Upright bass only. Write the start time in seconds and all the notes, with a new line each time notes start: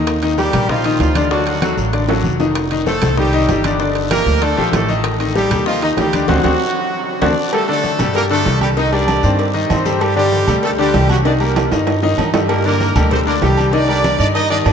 Already playing: D#2
0.53 A#1
1.00 D2
1.77 A1
2.24 F1
3.02 C2
3.48 G1
4.26 D2
4.57 A#1
4.72 A1
5.50 D#2
5.97 D2
6.28 D2
6.44 D2
7.22 D2
7.99 G2
8.46 C2
9.23 G2
9.70 G2
10.47 D2
10.94 C2
11.71 G2
12.18 G2
12.95 D2
13.42 C2
14.19 G2
14.66 G2